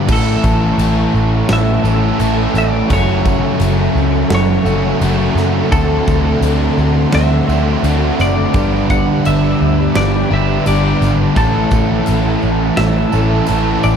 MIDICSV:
0, 0, Header, 1, 8, 480
1, 0, Start_track
1, 0, Tempo, 705053
1, 60, Time_signature, 4, 2, 24, 8
1, 9507, End_track
2, 0, Start_track
2, 0, Title_t, "String machine"
2, 0, Program_c, 0, 50
2, 57, Note_on_c, 0, 76, 78
2, 58, Note_on_c, 0, 85, 91
2, 59, Note_on_c, 0, 69, 83
2, 60, Note_on_c, 0, 78, 73
2, 1961, Note_off_c, 0, 85, 0
2, 1997, Note_on_c, 0, 85, 92
2, 3872, Note_off_c, 0, 76, 0
2, 3890, Note_off_c, 0, 85, 0
2, 3905, Note_on_c, 0, 74, 79
2, 3905, Note_on_c, 0, 84, 97
2, 5792, Note_off_c, 0, 69, 0
2, 5802, Note_off_c, 0, 84, 0
2, 5835, Note_on_c, 0, 83, 100
2, 5838, Note_on_c, 0, 67, 83
2, 7712, Note_off_c, 0, 78, 0
2, 7714, Note_off_c, 0, 74, 0
2, 7727, Note_on_c, 0, 69, 84
2, 7728, Note_off_c, 0, 83, 0
2, 7729, Note_on_c, 0, 78, 67
2, 7730, Note_off_c, 0, 67, 0
2, 7730, Note_on_c, 0, 81, 83
2, 7731, Note_on_c, 0, 76, 73
2, 9507, Note_off_c, 0, 69, 0
2, 9507, Note_off_c, 0, 76, 0
2, 9507, Note_off_c, 0, 78, 0
2, 9507, Note_off_c, 0, 81, 0
2, 9507, End_track
3, 0, Start_track
3, 0, Title_t, "Clean electric guitar"
3, 0, Program_c, 1, 27
3, 85, Note_on_c, 1, 69, 100
3, 1038, Note_off_c, 1, 69, 0
3, 1041, Note_on_c, 1, 76, 115
3, 1756, Note_off_c, 1, 76, 0
3, 1759, Note_on_c, 1, 74, 98
3, 1974, Note_off_c, 1, 74, 0
3, 1995, Note_on_c, 1, 73, 110
3, 2951, Note_off_c, 1, 73, 0
3, 2959, Note_on_c, 1, 73, 90
3, 3643, Note_off_c, 1, 73, 0
3, 3895, Note_on_c, 1, 69, 106
3, 4866, Note_on_c, 1, 76, 94
3, 4886, Note_off_c, 1, 69, 0
3, 5555, Note_off_c, 1, 76, 0
3, 5591, Note_on_c, 1, 74, 107
3, 6059, Note_off_c, 1, 74, 0
3, 6062, Note_on_c, 1, 78, 104
3, 6304, Note_off_c, 1, 78, 0
3, 6307, Note_on_c, 1, 76, 118
3, 6782, Note_off_c, 1, 76, 0
3, 6785, Note_on_c, 1, 74, 96
3, 7029, Note_off_c, 1, 74, 0
3, 7036, Note_on_c, 1, 76, 102
3, 7265, Note_off_c, 1, 76, 0
3, 7268, Note_on_c, 1, 74, 94
3, 7599, Note_off_c, 1, 74, 0
3, 7743, Note_on_c, 1, 69, 101
3, 8695, Note_on_c, 1, 76, 111
3, 8732, Note_off_c, 1, 69, 0
3, 9418, Note_off_c, 1, 76, 0
3, 9421, Note_on_c, 1, 74, 96
3, 9507, Note_off_c, 1, 74, 0
3, 9507, End_track
4, 0, Start_track
4, 0, Title_t, "Overdriven electric guitar"
4, 0, Program_c, 2, 29
4, 65, Note_on_c, 2, 64, 102
4, 1238, Note_off_c, 2, 64, 0
4, 1246, Note_on_c, 2, 64, 85
4, 1480, Note_off_c, 2, 64, 0
4, 1499, Note_on_c, 2, 64, 93
4, 1966, Note_off_c, 2, 64, 0
4, 7752, Note_on_c, 2, 64, 83
4, 8933, Note_off_c, 2, 64, 0
4, 8941, Note_on_c, 2, 64, 82
4, 9167, Note_off_c, 2, 64, 0
4, 9205, Note_on_c, 2, 64, 91
4, 9507, Note_off_c, 2, 64, 0
4, 9507, End_track
5, 0, Start_track
5, 0, Title_t, "Overdriven electric guitar"
5, 0, Program_c, 3, 29
5, 53, Note_on_c, 3, 45, 95
5, 60, Note_on_c, 3, 52, 92
5, 63, Note_on_c, 3, 57, 92
5, 67, Note_on_c, 3, 61, 94
5, 69, Note_on_c, 3, 69, 106
5, 1244, Note_off_c, 3, 45, 0
5, 1247, Note_off_c, 3, 52, 0
5, 1248, Note_off_c, 3, 69, 0
5, 1249, Note_off_c, 3, 61, 0
5, 1251, Note_on_c, 3, 69, 98
5, 1257, Note_on_c, 3, 61, 85
5, 1259, Note_off_c, 3, 57, 0
5, 1262, Note_on_c, 3, 57, 66
5, 1266, Note_on_c, 3, 52, 75
5, 1269, Note_on_c, 3, 45, 71
5, 1485, Note_off_c, 3, 61, 0
5, 1486, Note_off_c, 3, 45, 0
5, 1489, Note_off_c, 3, 52, 0
5, 1494, Note_on_c, 3, 45, 75
5, 1497, Note_on_c, 3, 52, 88
5, 1498, Note_off_c, 3, 57, 0
5, 1501, Note_on_c, 3, 57, 83
5, 1507, Note_off_c, 3, 69, 0
5, 1509, Note_on_c, 3, 61, 93
5, 1510, Note_on_c, 3, 69, 105
5, 1964, Note_off_c, 3, 45, 0
5, 1965, Note_off_c, 3, 52, 0
5, 1970, Note_on_c, 3, 42, 93
5, 1971, Note_off_c, 3, 61, 0
5, 1972, Note_on_c, 3, 49, 87
5, 1975, Note_on_c, 3, 54, 85
5, 1976, Note_off_c, 3, 57, 0
5, 1978, Note_on_c, 3, 57, 96
5, 1981, Note_on_c, 3, 61, 117
5, 1983, Note_off_c, 3, 69, 0
5, 1986, Note_on_c, 3, 66, 101
5, 3161, Note_off_c, 3, 42, 0
5, 3162, Note_off_c, 3, 49, 0
5, 3164, Note_off_c, 3, 61, 0
5, 3164, Note_off_c, 3, 66, 0
5, 3165, Note_off_c, 3, 57, 0
5, 3166, Note_on_c, 3, 66, 82
5, 3172, Note_on_c, 3, 61, 86
5, 3175, Note_off_c, 3, 54, 0
5, 3175, Note_on_c, 3, 57, 83
5, 3177, Note_on_c, 3, 54, 77
5, 3181, Note_on_c, 3, 49, 73
5, 3184, Note_on_c, 3, 42, 79
5, 3402, Note_off_c, 3, 61, 0
5, 3404, Note_off_c, 3, 57, 0
5, 3406, Note_off_c, 3, 42, 0
5, 3406, Note_off_c, 3, 49, 0
5, 3414, Note_on_c, 3, 42, 79
5, 3417, Note_off_c, 3, 54, 0
5, 3417, Note_on_c, 3, 49, 89
5, 3420, Note_on_c, 3, 54, 83
5, 3421, Note_on_c, 3, 57, 91
5, 3427, Note_on_c, 3, 61, 83
5, 3429, Note_off_c, 3, 66, 0
5, 3432, Note_on_c, 3, 66, 100
5, 3883, Note_off_c, 3, 42, 0
5, 3884, Note_off_c, 3, 49, 0
5, 3885, Note_off_c, 3, 54, 0
5, 3886, Note_off_c, 3, 57, 0
5, 3888, Note_on_c, 3, 50, 98
5, 3889, Note_off_c, 3, 61, 0
5, 3896, Note_on_c, 3, 57, 94
5, 3898, Note_on_c, 3, 60, 105
5, 3905, Note_off_c, 3, 66, 0
5, 3908, Note_on_c, 3, 66, 110
5, 5079, Note_off_c, 3, 50, 0
5, 5083, Note_off_c, 3, 57, 0
5, 5084, Note_off_c, 3, 60, 0
5, 5096, Note_off_c, 3, 66, 0
5, 5098, Note_on_c, 3, 66, 77
5, 5105, Note_on_c, 3, 60, 91
5, 5111, Note_on_c, 3, 57, 82
5, 5118, Note_on_c, 3, 50, 76
5, 5328, Note_off_c, 3, 50, 0
5, 5328, Note_off_c, 3, 60, 0
5, 5331, Note_off_c, 3, 57, 0
5, 5336, Note_on_c, 3, 50, 85
5, 5343, Note_on_c, 3, 57, 89
5, 5348, Note_on_c, 3, 60, 82
5, 5352, Note_off_c, 3, 66, 0
5, 5354, Note_on_c, 3, 66, 94
5, 5803, Note_off_c, 3, 50, 0
5, 5807, Note_off_c, 3, 57, 0
5, 5809, Note_off_c, 3, 60, 0
5, 5818, Note_on_c, 3, 50, 103
5, 5819, Note_on_c, 3, 43, 89
5, 5822, Note_on_c, 3, 55, 88
5, 5827, Note_on_c, 3, 59, 102
5, 5830, Note_on_c, 3, 62, 105
5, 5833, Note_off_c, 3, 66, 0
5, 5835, Note_on_c, 3, 67, 113
5, 7004, Note_off_c, 3, 50, 0
5, 7005, Note_off_c, 3, 43, 0
5, 7006, Note_off_c, 3, 55, 0
5, 7008, Note_off_c, 3, 59, 0
5, 7008, Note_off_c, 3, 67, 0
5, 7010, Note_off_c, 3, 62, 0
5, 7016, Note_on_c, 3, 67, 102
5, 7020, Note_on_c, 3, 62, 83
5, 7026, Note_on_c, 3, 59, 77
5, 7030, Note_on_c, 3, 50, 80
5, 7031, Note_on_c, 3, 55, 75
5, 7036, Note_on_c, 3, 43, 77
5, 7243, Note_off_c, 3, 67, 0
5, 7245, Note_off_c, 3, 62, 0
5, 7248, Note_off_c, 3, 59, 0
5, 7250, Note_off_c, 3, 50, 0
5, 7251, Note_off_c, 3, 55, 0
5, 7253, Note_off_c, 3, 43, 0
5, 7261, Note_on_c, 3, 50, 77
5, 7263, Note_on_c, 3, 43, 77
5, 7268, Note_on_c, 3, 55, 81
5, 7269, Note_on_c, 3, 59, 84
5, 7271, Note_on_c, 3, 62, 93
5, 7277, Note_on_c, 3, 67, 87
5, 7726, Note_off_c, 3, 50, 0
5, 7727, Note_off_c, 3, 43, 0
5, 7729, Note_off_c, 3, 55, 0
5, 7730, Note_off_c, 3, 59, 0
5, 7731, Note_off_c, 3, 62, 0
5, 7732, Note_on_c, 3, 45, 89
5, 7734, Note_off_c, 3, 67, 0
5, 7737, Note_on_c, 3, 52, 110
5, 7744, Note_on_c, 3, 57, 93
5, 7744, Note_on_c, 3, 61, 102
5, 7750, Note_on_c, 3, 69, 97
5, 8923, Note_off_c, 3, 45, 0
5, 8926, Note_off_c, 3, 52, 0
5, 8929, Note_off_c, 3, 61, 0
5, 8929, Note_off_c, 3, 69, 0
5, 8932, Note_on_c, 3, 69, 87
5, 8938, Note_off_c, 3, 57, 0
5, 8939, Note_on_c, 3, 61, 84
5, 8941, Note_on_c, 3, 57, 86
5, 8944, Note_on_c, 3, 52, 82
5, 8950, Note_on_c, 3, 45, 68
5, 9159, Note_off_c, 3, 45, 0
5, 9165, Note_off_c, 3, 52, 0
5, 9166, Note_off_c, 3, 61, 0
5, 9167, Note_on_c, 3, 45, 78
5, 9172, Note_off_c, 3, 57, 0
5, 9173, Note_on_c, 3, 52, 84
5, 9174, Note_on_c, 3, 57, 78
5, 9179, Note_on_c, 3, 61, 92
5, 9180, Note_off_c, 3, 69, 0
5, 9183, Note_on_c, 3, 69, 90
5, 9507, Note_off_c, 3, 45, 0
5, 9507, Note_off_c, 3, 52, 0
5, 9507, Note_off_c, 3, 57, 0
5, 9507, Note_off_c, 3, 61, 0
5, 9507, Note_off_c, 3, 69, 0
5, 9507, End_track
6, 0, Start_track
6, 0, Title_t, "Distorted electric guitar"
6, 0, Program_c, 4, 30
6, 53, Note_on_c, 4, 45, 88
6, 68, Note_on_c, 4, 52, 93
6, 73, Note_on_c, 4, 57, 101
6, 1003, Note_off_c, 4, 45, 0
6, 1011, Note_on_c, 4, 45, 85
6, 1021, Note_off_c, 4, 52, 0
6, 1023, Note_on_c, 4, 52, 87
6, 1032, Note_off_c, 4, 57, 0
6, 1035, Note_on_c, 4, 57, 99
6, 1962, Note_off_c, 4, 45, 0
6, 1968, Note_off_c, 4, 52, 0
6, 1978, Note_on_c, 4, 42, 88
6, 1992, Note_on_c, 4, 49, 94
6, 1999, Note_on_c, 4, 54, 100
6, 2925, Note_off_c, 4, 42, 0
6, 2932, Note_off_c, 4, 49, 0
6, 2932, Note_on_c, 4, 42, 89
6, 2941, Note_on_c, 4, 49, 88
6, 2949, Note_off_c, 4, 54, 0
6, 2952, Note_on_c, 4, 54, 102
6, 3418, Note_off_c, 4, 57, 0
6, 3882, Note_off_c, 4, 42, 0
6, 3886, Note_off_c, 4, 49, 0
6, 3893, Note_on_c, 4, 50, 102
6, 3904, Note_off_c, 4, 54, 0
6, 3907, Note_on_c, 4, 57, 89
6, 3919, Note_on_c, 4, 62, 88
6, 4842, Note_off_c, 4, 50, 0
6, 4849, Note_off_c, 4, 57, 0
6, 4849, Note_on_c, 4, 50, 86
6, 4863, Note_on_c, 4, 57, 91
6, 4866, Note_off_c, 4, 62, 0
6, 4869, Note_on_c, 4, 62, 93
6, 5799, Note_off_c, 4, 50, 0
6, 5806, Note_off_c, 4, 57, 0
6, 5809, Note_off_c, 4, 62, 0
6, 5816, Note_on_c, 4, 43, 93
6, 5828, Note_on_c, 4, 50, 107
6, 5841, Note_on_c, 4, 55, 97
6, 6763, Note_off_c, 4, 43, 0
6, 6769, Note_off_c, 4, 50, 0
6, 6772, Note_on_c, 4, 43, 84
6, 6776, Note_off_c, 4, 55, 0
6, 6784, Note_on_c, 4, 50, 87
6, 6795, Note_on_c, 4, 55, 96
6, 7721, Note_off_c, 4, 43, 0
6, 7728, Note_off_c, 4, 50, 0
6, 7733, Note_off_c, 4, 55, 0
6, 7733, Note_on_c, 4, 45, 91
6, 7745, Note_on_c, 4, 52, 95
6, 7757, Note_on_c, 4, 57, 94
6, 8683, Note_off_c, 4, 45, 0
6, 8694, Note_on_c, 4, 45, 77
6, 8702, Note_off_c, 4, 52, 0
6, 8704, Note_on_c, 4, 52, 92
6, 8712, Note_off_c, 4, 57, 0
6, 8715, Note_on_c, 4, 57, 100
6, 9507, Note_off_c, 4, 45, 0
6, 9507, Note_off_c, 4, 52, 0
6, 9507, Note_off_c, 4, 57, 0
6, 9507, End_track
7, 0, Start_track
7, 0, Title_t, "Picked electric bass"
7, 0, Program_c, 5, 34
7, 59, Note_on_c, 5, 33, 80
7, 237, Note_off_c, 5, 33, 0
7, 300, Note_on_c, 5, 33, 87
7, 478, Note_off_c, 5, 33, 0
7, 532, Note_on_c, 5, 33, 102
7, 713, Note_off_c, 5, 33, 0
7, 778, Note_on_c, 5, 33, 84
7, 956, Note_off_c, 5, 33, 0
7, 1017, Note_on_c, 5, 33, 84
7, 1196, Note_off_c, 5, 33, 0
7, 1252, Note_on_c, 5, 33, 80
7, 1433, Note_off_c, 5, 33, 0
7, 1498, Note_on_c, 5, 33, 95
7, 1677, Note_off_c, 5, 33, 0
7, 1731, Note_on_c, 5, 33, 93
7, 1912, Note_off_c, 5, 33, 0
7, 1981, Note_on_c, 5, 30, 91
7, 2336, Note_off_c, 5, 30, 0
7, 2456, Note_on_c, 5, 30, 100
7, 2635, Note_off_c, 5, 30, 0
7, 2692, Note_on_c, 5, 37, 95
7, 2873, Note_off_c, 5, 37, 0
7, 2930, Note_on_c, 5, 30, 90
7, 3112, Note_off_c, 5, 30, 0
7, 3164, Note_on_c, 5, 30, 92
7, 3347, Note_off_c, 5, 30, 0
7, 3413, Note_on_c, 5, 30, 97
7, 3593, Note_off_c, 5, 30, 0
7, 3643, Note_on_c, 5, 42, 90
7, 3827, Note_off_c, 5, 42, 0
7, 3899, Note_on_c, 5, 38, 83
7, 4077, Note_off_c, 5, 38, 0
7, 4138, Note_on_c, 5, 38, 96
7, 4316, Note_off_c, 5, 38, 0
7, 4365, Note_on_c, 5, 38, 94
7, 4548, Note_off_c, 5, 38, 0
7, 4613, Note_on_c, 5, 38, 92
7, 4793, Note_off_c, 5, 38, 0
7, 4864, Note_on_c, 5, 38, 92
7, 5040, Note_off_c, 5, 38, 0
7, 5096, Note_on_c, 5, 38, 92
7, 5275, Note_off_c, 5, 38, 0
7, 5332, Note_on_c, 5, 38, 94
7, 5512, Note_off_c, 5, 38, 0
7, 5580, Note_on_c, 5, 30, 93
7, 5757, Note_off_c, 5, 30, 0
7, 5818, Note_on_c, 5, 31, 82
7, 6173, Note_off_c, 5, 31, 0
7, 6311, Note_on_c, 5, 31, 99
7, 6484, Note_off_c, 5, 31, 0
7, 6543, Note_on_c, 5, 38, 81
7, 6719, Note_off_c, 5, 38, 0
7, 6781, Note_on_c, 5, 31, 94
7, 6958, Note_off_c, 5, 31, 0
7, 7020, Note_on_c, 5, 31, 90
7, 7197, Note_off_c, 5, 31, 0
7, 7264, Note_on_c, 5, 31, 94
7, 7439, Note_off_c, 5, 31, 0
7, 7496, Note_on_c, 5, 32, 100
7, 7675, Note_off_c, 5, 32, 0
7, 7736, Note_on_c, 5, 33, 90
7, 7915, Note_off_c, 5, 33, 0
7, 7976, Note_on_c, 5, 33, 80
7, 8155, Note_off_c, 5, 33, 0
7, 8228, Note_on_c, 5, 33, 88
7, 8403, Note_off_c, 5, 33, 0
7, 8466, Note_on_c, 5, 33, 88
7, 8642, Note_off_c, 5, 33, 0
7, 8698, Note_on_c, 5, 33, 91
7, 8876, Note_off_c, 5, 33, 0
7, 8942, Note_on_c, 5, 33, 90
7, 9120, Note_off_c, 5, 33, 0
7, 9187, Note_on_c, 5, 33, 102
7, 9363, Note_off_c, 5, 33, 0
7, 9425, Note_on_c, 5, 33, 98
7, 9507, Note_off_c, 5, 33, 0
7, 9507, End_track
8, 0, Start_track
8, 0, Title_t, "Drums"
8, 57, Note_on_c, 9, 49, 120
8, 57, Note_on_c, 9, 57, 69
8, 60, Note_on_c, 9, 36, 123
8, 60, Note_on_c, 9, 54, 74
8, 125, Note_off_c, 9, 49, 0
8, 125, Note_off_c, 9, 57, 0
8, 128, Note_off_c, 9, 36, 0
8, 128, Note_off_c, 9, 54, 0
8, 297, Note_on_c, 9, 54, 75
8, 300, Note_on_c, 9, 36, 107
8, 365, Note_off_c, 9, 54, 0
8, 368, Note_off_c, 9, 36, 0
8, 538, Note_on_c, 9, 54, 86
8, 539, Note_on_c, 9, 57, 70
8, 606, Note_off_c, 9, 54, 0
8, 607, Note_off_c, 9, 57, 0
8, 787, Note_on_c, 9, 54, 26
8, 855, Note_off_c, 9, 54, 0
8, 1014, Note_on_c, 9, 38, 125
8, 1014, Note_on_c, 9, 57, 70
8, 1082, Note_off_c, 9, 38, 0
8, 1082, Note_off_c, 9, 57, 0
8, 1260, Note_on_c, 9, 54, 75
8, 1329, Note_off_c, 9, 54, 0
8, 1495, Note_on_c, 9, 57, 72
8, 1502, Note_on_c, 9, 54, 90
8, 1563, Note_off_c, 9, 57, 0
8, 1570, Note_off_c, 9, 54, 0
8, 1734, Note_on_c, 9, 38, 37
8, 1737, Note_on_c, 9, 54, 72
8, 1802, Note_off_c, 9, 38, 0
8, 1805, Note_off_c, 9, 54, 0
8, 1974, Note_on_c, 9, 57, 74
8, 1977, Note_on_c, 9, 36, 106
8, 1980, Note_on_c, 9, 54, 85
8, 2042, Note_off_c, 9, 57, 0
8, 2045, Note_off_c, 9, 36, 0
8, 2048, Note_off_c, 9, 54, 0
8, 2216, Note_on_c, 9, 36, 98
8, 2218, Note_on_c, 9, 54, 70
8, 2285, Note_off_c, 9, 36, 0
8, 2286, Note_off_c, 9, 54, 0
8, 2448, Note_on_c, 9, 57, 65
8, 2459, Note_on_c, 9, 54, 102
8, 2516, Note_off_c, 9, 57, 0
8, 2528, Note_off_c, 9, 54, 0
8, 2704, Note_on_c, 9, 54, 25
8, 2772, Note_off_c, 9, 54, 0
8, 2930, Note_on_c, 9, 38, 123
8, 2930, Note_on_c, 9, 57, 67
8, 2998, Note_off_c, 9, 38, 0
8, 2998, Note_off_c, 9, 57, 0
8, 3173, Note_on_c, 9, 54, 70
8, 3241, Note_off_c, 9, 54, 0
8, 3414, Note_on_c, 9, 54, 87
8, 3416, Note_on_c, 9, 57, 67
8, 3482, Note_off_c, 9, 54, 0
8, 3484, Note_off_c, 9, 57, 0
8, 3657, Note_on_c, 9, 38, 38
8, 3661, Note_on_c, 9, 54, 70
8, 3726, Note_off_c, 9, 38, 0
8, 3729, Note_off_c, 9, 54, 0
8, 3893, Note_on_c, 9, 54, 69
8, 3896, Note_on_c, 9, 57, 58
8, 3897, Note_on_c, 9, 36, 111
8, 3961, Note_off_c, 9, 54, 0
8, 3964, Note_off_c, 9, 57, 0
8, 3965, Note_off_c, 9, 36, 0
8, 4135, Note_on_c, 9, 54, 63
8, 4138, Note_on_c, 9, 36, 102
8, 4203, Note_off_c, 9, 54, 0
8, 4206, Note_off_c, 9, 36, 0
8, 4374, Note_on_c, 9, 54, 85
8, 4378, Note_on_c, 9, 57, 66
8, 4442, Note_off_c, 9, 54, 0
8, 4446, Note_off_c, 9, 57, 0
8, 4618, Note_on_c, 9, 54, 30
8, 4686, Note_off_c, 9, 54, 0
8, 4851, Note_on_c, 9, 38, 124
8, 4851, Note_on_c, 9, 57, 71
8, 4919, Note_off_c, 9, 38, 0
8, 4919, Note_off_c, 9, 57, 0
8, 5102, Note_on_c, 9, 54, 69
8, 5170, Note_off_c, 9, 54, 0
8, 5337, Note_on_c, 9, 57, 65
8, 5338, Note_on_c, 9, 54, 84
8, 5405, Note_off_c, 9, 57, 0
8, 5406, Note_off_c, 9, 54, 0
8, 5572, Note_on_c, 9, 38, 31
8, 5581, Note_on_c, 9, 54, 81
8, 5640, Note_off_c, 9, 38, 0
8, 5649, Note_off_c, 9, 54, 0
8, 5812, Note_on_c, 9, 57, 66
8, 5816, Note_on_c, 9, 36, 120
8, 5824, Note_on_c, 9, 54, 73
8, 5880, Note_off_c, 9, 57, 0
8, 5884, Note_off_c, 9, 36, 0
8, 5892, Note_off_c, 9, 54, 0
8, 6059, Note_on_c, 9, 36, 102
8, 6062, Note_on_c, 9, 54, 67
8, 6127, Note_off_c, 9, 36, 0
8, 6130, Note_off_c, 9, 54, 0
8, 6298, Note_on_c, 9, 57, 66
8, 6301, Note_on_c, 9, 54, 100
8, 6367, Note_off_c, 9, 57, 0
8, 6369, Note_off_c, 9, 54, 0
8, 6777, Note_on_c, 9, 38, 121
8, 6777, Note_on_c, 9, 57, 74
8, 6778, Note_on_c, 9, 54, 30
8, 6845, Note_off_c, 9, 38, 0
8, 6845, Note_off_c, 9, 57, 0
8, 6846, Note_off_c, 9, 54, 0
8, 7258, Note_on_c, 9, 54, 99
8, 7264, Note_on_c, 9, 57, 73
8, 7326, Note_off_c, 9, 54, 0
8, 7332, Note_off_c, 9, 57, 0
8, 7502, Note_on_c, 9, 54, 76
8, 7504, Note_on_c, 9, 38, 34
8, 7570, Note_off_c, 9, 54, 0
8, 7572, Note_off_c, 9, 38, 0
8, 7737, Note_on_c, 9, 36, 114
8, 7738, Note_on_c, 9, 57, 62
8, 7740, Note_on_c, 9, 54, 78
8, 7805, Note_off_c, 9, 36, 0
8, 7806, Note_off_c, 9, 57, 0
8, 7808, Note_off_c, 9, 54, 0
8, 7972, Note_on_c, 9, 54, 79
8, 7976, Note_on_c, 9, 36, 106
8, 8040, Note_off_c, 9, 54, 0
8, 8044, Note_off_c, 9, 36, 0
8, 8209, Note_on_c, 9, 57, 62
8, 8217, Note_on_c, 9, 54, 98
8, 8278, Note_off_c, 9, 57, 0
8, 8286, Note_off_c, 9, 54, 0
8, 8457, Note_on_c, 9, 54, 28
8, 8525, Note_off_c, 9, 54, 0
8, 8695, Note_on_c, 9, 38, 126
8, 8695, Note_on_c, 9, 57, 65
8, 8763, Note_off_c, 9, 38, 0
8, 8763, Note_off_c, 9, 57, 0
8, 8935, Note_on_c, 9, 54, 67
8, 9003, Note_off_c, 9, 54, 0
8, 9167, Note_on_c, 9, 54, 100
8, 9181, Note_on_c, 9, 57, 66
8, 9235, Note_off_c, 9, 54, 0
8, 9249, Note_off_c, 9, 57, 0
8, 9417, Note_on_c, 9, 54, 76
8, 9485, Note_off_c, 9, 54, 0
8, 9507, End_track
0, 0, End_of_file